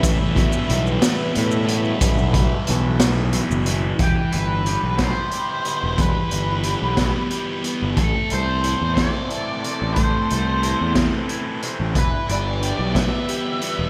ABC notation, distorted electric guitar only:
X:1
M:6/8
L:1/8
Q:3/8=60
K:Ephr
V:1 name="Distorted electric guitar" clef=bass
[E,,B,,E,] [E,,B,,E,] [E,,B,,E,] [E,,B,,E,] [E,,B,,E,] [E,,B,,E,] | [E,,B,,E,] [E,,B,,E,] [E,,B,,E,] [E,,B,,E,] [E,,B,,E,] [E,,B,,E,] | E, B G B, G B, | E, B G B, G B, |
A, A E C E C | A, A E C E C | E, B G B, G B, |]